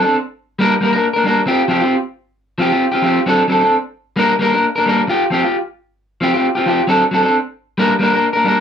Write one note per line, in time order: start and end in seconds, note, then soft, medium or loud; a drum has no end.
0.02 0.17 C4 soft
0.02 0.16 D4 soft
0.02 0.15 A4 medium
0.59 0.73 G3 medium
0.59 0.73 A#3 medium
0.59 0.74 D4 medium
0.59 0.74 A#4 medium
0.81 0.93 G3 medium
0.81 0.93 A#3 medium
0.81 0.92 A#4 medium
0.81 muted clean electric guitar stroke medium
0.93 1.07 A#3 soft
0.93 1.07 D4 medium
0.93 1.05 A#4 medium
1.13 1.25 D4 medium
1.13 1.25 A#4 medium
1.18 1.24 A#3 soft
1.24 1.39 G3 soft
1.24 1.40 A#3 medium
1.24 1.40 D4 medium
1.24 1.41 A#4 medium
1.46 1.62 C4 medium
1.46 1.62 F4 medium
1.46 1.62 G4 medium
1.46 muted clean electric guitar stroke medium
1.68 1.82 F3 medium
1.68 1.82 C4 medium
1.68 1.80 F4 medium
1.68 1.79 G4 medium
1.80 1.96 C4 soft
1.80 1.95 F4 soft
1.80 1.94 G4 soft
2.58 2.72 F3 medium
2.58 2.72 C4 medium
2.58 2.71 F4 medium
2.58 2.69 G4 medium
2.70 2.86 C4 soft
2.70 2.85 F4 medium
2.70 2.84 G4 medium
2.92 3.02 C4 soft
2.92 3.03 F4 medium
2.92 3.04 G4 medium
3.02 3.18 F3 medium
3.02 3.19 C4 medium
3.02 3.19 F4 medium
3.02 3.20 G4 medium
3.26 3.41 F#3 medium
3.26 3.42 C4 medium
3.26 3.43 D4 medium
3.26 3.43 A4 medium
3.48 3.62 F#3 medium
3.48 3.62 C4 medium
3.48 3.61 D4 medium
3.48 3.59 A4 medium
3.61 3.76 C4 soft
3.61 3.75 D4 soft
3.61 3.75 A4 soft
4.16 4.31 G3 medium
4.16 4.32 A#3 medium
4.16 4.33 D4 medium
4.16 4.33 A#4 medium
4.39 4.52 G3 medium
4.39 4.53 A#3 medium
4.39 4.53 D4 medium
4.39 4.51 A#4 medium
4.52 4.67 A#3 soft
4.52 4.66 D4 soft
4.52 4.65 A#4 medium
4.76 4.87 A#3 soft
4.76 4.87 D4 medium
4.76 4.86 A#4 medium
4.86 5.00 G3 medium
4.86 5.01 A#3 medium
4.86 5.02 D4 medium
4.86 5.02 A#4 medium
5.08 5.23 F4 medium
5.08 5.24 G4 medium
5.08 muted clean electric guitar stroke medium
5.30 5.43 F3 medium
5.30 5.44 C4 medium
5.30 5.43 F4 medium
5.30 5.41 G4 medium
5.42 5.57 F4 soft
5.42 5.55 G4 soft
6.21 6.33 F3 medium
6.21 6.33 C4 medium
6.21 6.34 F4 medium
6.21 6.33 G4 medium
6.34 6.48 C4 soft
6.34 6.47 F4 medium
6.34 6.46 G4 medium
6.55 6.65 C4 soft
6.55 6.66 F4 soft
6.55 6.66 G4 medium
6.66 6.80 F3 medium
6.66 6.80 C4 medium
6.66 6.81 F4 medium
6.66 6.82 G4 medium
6.87 7.02 F#3 medium
6.87 7.03 C4 medium
6.87 7.03 D4 medium
6.87 7.03 A4 medium
7.11 7.23 F#3 medium
7.11 7.24 C4 medium
7.11 7.24 D4 medium
7.11 7.22 A4 medium
7.23 7.37 C4 soft
7.23 7.37 D4 soft
7.23 7.36 A4 medium
7.78 7.92 G3 medium
7.78 7.93 A#3 medium
7.78 7.93 D4 medium
7.78 7.93 A#4 medium
7.99 8.12 G3 medium
7.99 8.13 A#3 medium
7.99 8.13 D4 medium
8.03 8.12 A#4 medium
8.13 8.27 A#3 soft
8.13 8.26 D4 soft
8.13 8.26 A#4 medium
8.33 8.44 A#3 soft
8.33 8.45 D4 medium
8.33 8.45 A#4 medium
8.45 8.59 G3 medium
8.45 8.60 A#3 medium
8.45 8.60 D4 medium
8.45 8.60 A#4 medium